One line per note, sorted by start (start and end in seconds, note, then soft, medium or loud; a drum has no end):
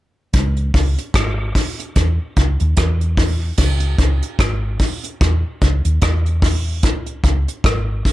0.33 0.70 C#2 medium
0.33 kick loud
0.33 closed hi-hat medium
0.56 closed hi-hat soft
0.74 0.95 C#2 medium
0.74 kick medium
0.74 open hi-hat medium
0.98 closed hi-hat medium
1.14 1.51 G#1 medium
1.14 kick loud
1.14 cross-stick loud
1.14 closed hi-hat medium
1.55 kick medium
1.55 open hi-hat medium
1.80 closed hi-hat soft
1.96 2.17 E2 loud
1.96 kick loud
1.96 cross-stick medium
1.96 closed hi-hat medium
2.36 2.58 C#2 medium
2.36 kick medium
2.36 closed hi-hat medium
2.60 2.76 D#2 medium
2.60 closed hi-hat soft
2.76 3.51 E2 medium
2.76 kick loud
2.76 cross-stick medium
2.76 closed hi-hat medium
3.01 closed hi-hat soft
3.17 kick loud
3.17 open hi-hat medium
3.57 3.95 C#2 medium
3.57 kick medium
3.57 crash medium
3.80 closed hi-hat soft
3.98 4.20 C#2 medium
3.98 kick medium
3.98 closed hi-hat medium
4.22 closed hi-hat medium
4.39 4.76 G#1 medium
4.39 kick loud
4.39 cross-stick loud
4.39 closed hi-hat medium
4.79 kick medium
4.79 open hi-hat medium
5.04 closed hi-hat soft
5.21 5.42 E2 loud
5.21 kick loud
5.21 cross-stick medium
5.21 closed hi-hat medium
5.61 5.83 C#2 medium
5.61 kick medium
5.61 closed hi-hat medium
5.85 6.00 D#2 medium
5.85 closed hi-hat medium
6.01 6.84 E2 medium
6.01 kick loud
6.01 cross-stick medium
6.01 closed hi-hat medium
6.26 closed hi-hat soft
6.42 kick loud
6.42 open hi-hat medium
6.83 7.20 C#2 loud
6.83 kick loud
6.83 closed hi-hat loud
7.06 closed hi-hat soft
7.24 7.45 C#2 medium
7.24 kick medium
7.24 closed hi-hat medium
7.48 closed hi-hat medium
7.64 8.01 G#1 medium
7.64 kick loud
7.64 cross-stick loud
7.64 closed hi-hat medium
8.05 kick medium
8.05 open hi-hat medium